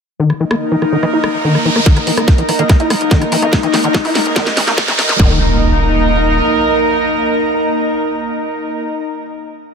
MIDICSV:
0, 0, Header, 1, 9, 480
1, 0, Start_track
1, 0, Tempo, 416667
1, 225, Time_signature, 4, 2, 24, 8
1, 11220, End_track
2, 0, Start_track
2, 0, Title_t, "Analog synth pad"
2, 0, Program_c, 0, 89
2, 225, Note_on_c, 0, 58, 70
2, 383, Note_on_c, 0, 63, 81
2, 405, Note_on_c, 0, 75, 73
2, 1030, Note_on_c, 0, 82, 73
2, 5971, Note_off_c, 0, 58, 0
2, 5985, Note_off_c, 0, 63, 0
2, 5985, Note_off_c, 0, 75, 0
2, 5985, Note_off_c, 0, 82, 0
2, 5985, Note_on_c, 0, 58, 76
2, 6057, Note_on_c, 0, 63, 77
2, 6129, Note_on_c, 0, 75, 77
2, 6201, Note_on_c, 0, 82, 74
2, 10201, Note_off_c, 0, 58, 0
2, 10273, Note_off_c, 0, 63, 0
2, 10345, Note_off_c, 0, 75, 0
2, 10417, Note_off_c, 0, 82, 0
2, 11220, End_track
3, 0, Start_track
3, 0, Title_t, "Ambient pad"
3, 0, Program_c, 1, 92
3, 225, Note_on_c, 1, 63, 74
3, 225, Note_on_c, 1, 70, 75
3, 2130, Note_off_c, 1, 70, 0
3, 2131, Note_off_c, 1, 63, 0
3, 2144, Note_on_c, 1, 70, 75
3, 2145, Note_on_c, 1, 63, 76
3, 5970, Note_off_c, 1, 70, 0
3, 5971, Note_off_c, 1, 63, 0
3, 5984, Note_on_c, 1, 70, 76
3, 5985, Note_on_c, 1, 63, 74
3, 10200, Note_off_c, 1, 70, 0
3, 10201, Note_off_c, 1, 63, 0
3, 11220, End_track
4, 0, Start_track
4, 0, Title_t, "Synth arpeggio sound"
4, 0, Program_c, 2, 84
4, 2144, Note_on_c, 2, 58, 92
4, 2221, Note_off_c, 2, 58, 0
4, 2264, Note_on_c, 2, 58, 75
4, 2341, Note_off_c, 2, 58, 0
4, 2984, Note_on_c, 2, 58, 88
4, 3061, Note_off_c, 2, 58, 0
4, 3104, Note_on_c, 2, 58, 79
4, 3181, Note_off_c, 2, 58, 0
4, 11220, End_track
5, 0, Start_track
5, 0, Title_t, "Acid bass"
5, 0, Program_c, 3, 38
5, 224, Note_on_c, 3, 51, 78
5, 344, Note_on_c, 3, 52, 101
5, 361, Note_off_c, 3, 51, 0
5, 375, Note_off_c, 3, 52, 0
5, 464, Note_on_c, 3, 52, 76
5, 515, Note_off_c, 3, 52, 0
5, 584, Note_on_c, 3, 58, 76
5, 635, Note_off_c, 3, 58, 0
5, 824, Note_on_c, 3, 52, 74
5, 876, Note_off_c, 3, 52, 0
5, 945, Note_on_c, 3, 52, 74
5, 975, Note_off_c, 3, 52, 0
5, 1065, Note_on_c, 3, 51, 77
5, 1116, Note_off_c, 3, 51, 0
5, 1184, Note_on_c, 3, 52, 98
5, 1215, Note_off_c, 3, 52, 0
5, 1305, Note_on_c, 3, 64, 77
5, 1424, Note_on_c, 3, 51, 78
5, 1442, Note_off_c, 3, 64, 0
5, 1475, Note_off_c, 3, 51, 0
5, 1664, Note_on_c, 3, 51, 83
5, 1784, Note_on_c, 3, 52, 101
5, 1802, Note_off_c, 3, 51, 0
5, 1815, Note_off_c, 3, 52, 0
5, 1905, Note_on_c, 3, 52, 76
5, 1956, Note_off_c, 3, 52, 0
5, 2024, Note_on_c, 3, 58, 76
5, 2075, Note_off_c, 3, 58, 0
5, 2145, Note_on_c, 3, 51, 80
5, 2264, Note_on_c, 3, 52, 99
5, 2282, Note_off_c, 3, 51, 0
5, 2295, Note_off_c, 3, 52, 0
5, 2385, Note_on_c, 3, 52, 77
5, 2436, Note_off_c, 3, 52, 0
5, 2504, Note_on_c, 3, 58, 75
5, 2555, Note_off_c, 3, 58, 0
5, 2745, Note_on_c, 3, 52, 75
5, 2796, Note_off_c, 3, 52, 0
5, 2864, Note_on_c, 3, 52, 78
5, 2895, Note_off_c, 3, 52, 0
5, 2984, Note_on_c, 3, 51, 78
5, 3035, Note_off_c, 3, 51, 0
5, 3104, Note_on_c, 3, 52, 102
5, 3135, Note_off_c, 3, 52, 0
5, 3224, Note_on_c, 3, 64, 81
5, 3344, Note_on_c, 3, 51, 81
5, 3361, Note_off_c, 3, 64, 0
5, 3395, Note_off_c, 3, 51, 0
5, 3584, Note_on_c, 3, 51, 89
5, 3704, Note_on_c, 3, 52, 103
5, 3721, Note_off_c, 3, 51, 0
5, 3735, Note_off_c, 3, 52, 0
5, 3824, Note_on_c, 3, 52, 79
5, 3875, Note_off_c, 3, 52, 0
5, 3944, Note_on_c, 3, 58, 78
5, 3995, Note_off_c, 3, 58, 0
5, 4184, Note_on_c, 3, 52, 78
5, 4235, Note_off_c, 3, 52, 0
5, 4304, Note_on_c, 3, 52, 76
5, 4335, Note_off_c, 3, 52, 0
5, 4424, Note_on_c, 3, 51, 79
5, 4475, Note_off_c, 3, 51, 0
5, 4544, Note_on_c, 3, 52, 102
5, 4575, Note_off_c, 3, 52, 0
5, 4664, Note_on_c, 3, 64, 78
5, 4784, Note_on_c, 3, 51, 77
5, 4801, Note_off_c, 3, 64, 0
5, 4835, Note_off_c, 3, 51, 0
5, 5024, Note_on_c, 3, 51, 84
5, 5144, Note_on_c, 3, 52, 106
5, 5161, Note_off_c, 3, 51, 0
5, 5175, Note_off_c, 3, 52, 0
5, 5264, Note_on_c, 3, 52, 77
5, 5315, Note_off_c, 3, 52, 0
5, 5384, Note_on_c, 3, 58, 79
5, 5435, Note_off_c, 3, 58, 0
5, 5624, Note_on_c, 3, 52, 79
5, 5675, Note_off_c, 3, 52, 0
5, 5744, Note_on_c, 3, 52, 78
5, 5775, Note_off_c, 3, 52, 0
5, 5864, Note_on_c, 3, 51, 75
5, 5915, Note_off_c, 3, 51, 0
5, 5984, Note_on_c, 3, 51, 91
5, 6208, Note_off_c, 3, 51, 0
5, 11220, End_track
6, 0, Start_track
6, 0, Title_t, "Analog synth bass"
6, 0, Program_c, 4, 38
6, 2264, Note_on_c, 4, 27, 86
6, 2344, Note_off_c, 4, 27, 0
6, 2384, Note_on_c, 4, 27, 101
6, 2464, Note_off_c, 4, 27, 0
6, 2504, Note_on_c, 4, 27, 92
6, 2584, Note_off_c, 4, 27, 0
6, 2744, Note_on_c, 4, 27, 86
6, 2824, Note_off_c, 4, 27, 0
6, 2864, Note_on_c, 4, 27, 99
6, 2944, Note_off_c, 4, 27, 0
6, 2984, Note_on_c, 4, 27, 90
6, 3064, Note_off_c, 4, 27, 0
6, 3224, Note_on_c, 4, 27, 90
6, 3304, Note_off_c, 4, 27, 0
6, 3344, Note_on_c, 4, 27, 98
6, 3424, Note_off_c, 4, 27, 0
6, 3464, Note_on_c, 4, 27, 94
6, 3544, Note_off_c, 4, 27, 0
6, 3824, Note_on_c, 4, 34, 103
6, 3904, Note_off_c, 4, 34, 0
6, 3945, Note_on_c, 4, 27, 92
6, 4024, Note_off_c, 4, 27, 0
6, 5744, Note_on_c, 4, 34, 104
6, 5824, Note_off_c, 4, 34, 0
6, 5984, Note_on_c, 4, 27, 96
6, 7378, Note_off_c, 4, 27, 0
6, 11220, End_track
7, 0, Start_track
7, 0, Title_t, "Impact"
7, 0, Program_c, 5, 103
7, 5984, Note_on_c, 5, 60, 67
7, 10247, Note_off_c, 5, 60, 0
7, 11220, End_track
8, 0, Start_track
8, 0, Title_t, "Riser"
8, 0, Program_c, 6, 103
8, 225, Note_on_c, 6, 60, 71
8, 2144, Note_off_c, 6, 60, 0
8, 2144, Note_on_c, 6, 60, 80
8, 5984, Note_off_c, 6, 60, 0
8, 11220, End_track
9, 0, Start_track
9, 0, Title_t, "Drums"
9, 345, Note_on_c, 9, 37, 37
9, 460, Note_off_c, 9, 37, 0
9, 585, Note_on_c, 9, 37, 77
9, 700, Note_off_c, 9, 37, 0
9, 945, Note_on_c, 9, 37, 38
9, 1060, Note_off_c, 9, 37, 0
9, 1185, Note_on_c, 9, 37, 37
9, 1300, Note_off_c, 9, 37, 0
9, 1424, Note_on_c, 9, 37, 79
9, 1540, Note_off_c, 9, 37, 0
9, 1785, Note_on_c, 9, 37, 40
9, 1900, Note_off_c, 9, 37, 0
9, 2025, Note_on_c, 9, 37, 38
9, 2140, Note_off_c, 9, 37, 0
9, 2144, Note_on_c, 9, 36, 115
9, 2144, Note_on_c, 9, 38, 50
9, 2144, Note_on_c, 9, 42, 81
9, 2260, Note_off_c, 9, 36, 0
9, 2260, Note_off_c, 9, 38, 0
9, 2260, Note_off_c, 9, 42, 0
9, 2265, Note_on_c, 9, 37, 39
9, 2265, Note_on_c, 9, 42, 55
9, 2380, Note_off_c, 9, 37, 0
9, 2380, Note_off_c, 9, 42, 0
9, 2385, Note_on_c, 9, 46, 106
9, 2500, Note_off_c, 9, 46, 0
9, 2505, Note_on_c, 9, 37, 79
9, 2505, Note_on_c, 9, 42, 58
9, 2620, Note_off_c, 9, 37, 0
9, 2620, Note_off_c, 9, 42, 0
9, 2624, Note_on_c, 9, 36, 121
9, 2624, Note_on_c, 9, 38, 50
9, 2624, Note_on_c, 9, 42, 79
9, 2740, Note_off_c, 9, 36, 0
9, 2740, Note_off_c, 9, 38, 0
9, 2740, Note_off_c, 9, 42, 0
9, 2745, Note_on_c, 9, 42, 55
9, 2860, Note_off_c, 9, 42, 0
9, 2865, Note_on_c, 9, 37, 39
9, 2865, Note_on_c, 9, 46, 105
9, 2980, Note_off_c, 9, 37, 0
9, 2980, Note_off_c, 9, 46, 0
9, 2984, Note_on_c, 9, 42, 52
9, 3100, Note_off_c, 9, 42, 0
9, 3104, Note_on_c, 9, 36, 120
9, 3105, Note_on_c, 9, 37, 38
9, 3105, Note_on_c, 9, 38, 57
9, 3105, Note_on_c, 9, 42, 81
9, 3219, Note_off_c, 9, 36, 0
9, 3220, Note_off_c, 9, 37, 0
9, 3220, Note_off_c, 9, 38, 0
9, 3220, Note_off_c, 9, 42, 0
9, 3225, Note_on_c, 9, 42, 55
9, 3340, Note_off_c, 9, 42, 0
9, 3345, Note_on_c, 9, 37, 82
9, 3345, Note_on_c, 9, 46, 111
9, 3460, Note_off_c, 9, 37, 0
9, 3460, Note_off_c, 9, 46, 0
9, 3465, Note_on_c, 9, 42, 54
9, 3580, Note_off_c, 9, 42, 0
9, 3584, Note_on_c, 9, 36, 120
9, 3585, Note_on_c, 9, 38, 63
9, 3585, Note_on_c, 9, 42, 79
9, 3700, Note_off_c, 9, 36, 0
9, 3700, Note_off_c, 9, 38, 0
9, 3700, Note_off_c, 9, 42, 0
9, 3704, Note_on_c, 9, 37, 40
9, 3704, Note_on_c, 9, 42, 54
9, 3820, Note_off_c, 9, 37, 0
9, 3820, Note_off_c, 9, 42, 0
9, 3824, Note_on_c, 9, 46, 108
9, 3939, Note_off_c, 9, 46, 0
9, 3944, Note_on_c, 9, 37, 40
9, 3944, Note_on_c, 9, 42, 57
9, 4059, Note_off_c, 9, 37, 0
9, 4059, Note_off_c, 9, 42, 0
9, 4064, Note_on_c, 9, 36, 123
9, 4064, Note_on_c, 9, 38, 76
9, 4064, Note_on_c, 9, 42, 82
9, 4179, Note_off_c, 9, 36, 0
9, 4179, Note_off_c, 9, 38, 0
9, 4179, Note_off_c, 9, 42, 0
9, 4184, Note_on_c, 9, 42, 54
9, 4300, Note_off_c, 9, 42, 0
9, 4304, Note_on_c, 9, 38, 79
9, 4304, Note_on_c, 9, 46, 113
9, 4419, Note_off_c, 9, 38, 0
9, 4419, Note_off_c, 9, 46, 0
9, 4424, Note_on_c, 9, 42, 54
9, 4539, Note_off_c, 9, 42, 0
9, 4544, Note_on_c, 9, 36, 127
9, 4544, Note_on_c, 9, 38, 84
9, 4544, Note_on_c, 9, 42, 76
9, 4659, Note_off_c, 9, 36, 0
9, 4659, Note_off_c, 9, 38, 0
9, 4659, Note_off_c, 9, 42, 0
9, 4664, Note_on_c, 9, 46, 65
9, 4780, Note_off_c, 9, 46, 0
9, 4784, Note_on_c, 9, 38, 87
9, 4784, Note_on_c, 9, 46, 110
9, 4900, Note_off_c, 9, 38, 0
9, 4900, Note_off_c, 9, 46, 0
9, 4904, Note_on_c, 9, 42, 53
9, 5019, Note_off_c, 9, 42, 0
9, 5024, Note_on_c, 9, 36, 124
9, 5024, Note_on_c, 9, 38, 91
9, 5024, Note_on_c, 9, 42, 80
9, 5139, Note_off_c, 9, 36, 0
9, 5139, Note_off_c, 9, 38, 0
9, 5139, Note_off_c, 9, 42, 0
9, 5144, Note_on_c, 9, 38, 82
9, 5144, Note_on_c, 9, 42, 54
9, 5259, Note_off_c, 9, 38, 0
9, 5259, Note_off_c, 9, 42, 0
9, 5264, Note_on_c, 9, 38, 98
9, 5264, Note_on_c, 9, 46, 113
9, 5379, Note_off_c, 9, 38, 0
9, 5379, Note_off_c, 9, 46, 0
9, 5384, Note_on_c, 9, 38, 84
9, 5384, Note_on_c, 9, 42, 53
9, 5500, Note_off_c, 9, 38, 0
9, 5500, Note_off_c, 9, 42, 0
9, 5504, Note_on_c, 9, 36, 120
9, 5504, Note_on_c, 9, 38, 105
9, 5504, Note_on_c, 9, 42, 81
9, 5619, Note_off_c, 9, 36, 0
9, 5620, Note_off_c, 9, 38, 0
9, 5620, Note_off_c, 9, 42, 0
9, 5625, Note_on_c, 9, 38, 94
9, 5625, Note_on_c, 9, 42, 54
9, 5740, Note_off_c, 9, 38, 0
9, 5740, Note_off_c, 9, 42, 0
9, 5744, Note_on_c, 9, 38, 109
9, 5744, Note_on_c, 9, 46, 110
9, 5860, Note_off_c, 9, 38, 0
9, 5860, Note_off_c, 9, 46, 0
9, 5864, Note_on_c, 9, 38, 98
9, 5864, Note_on_c, 9, 42, 57
9, 5979, Note_off_c, 9, 38, 0
9, 5979, Note_off_c, 9, 42, 0
9, 5984, Note_on_c, 9, 36, 114
9, 6099, Note_off_c, 9, 36, 0
9, 11220, End_track
0, 0, End_of_file